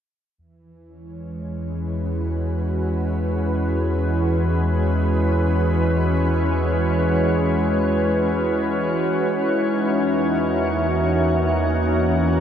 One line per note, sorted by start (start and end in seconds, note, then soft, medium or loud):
0.38 9.28 E2 medium
0.38 9.33 E3 medium
0.38 12.40 E3 medium
0.85 12.40 C#4 medium
0.99 9.36 G#3 medium
1.46 9.36 B4 medium
1.84 12.40 F#4 medium
9.34 12.40 E2 medium
9.34 12.40 D#4 medium
10.04 12.40 A#3 medium
12.30 12.40 A#4 medium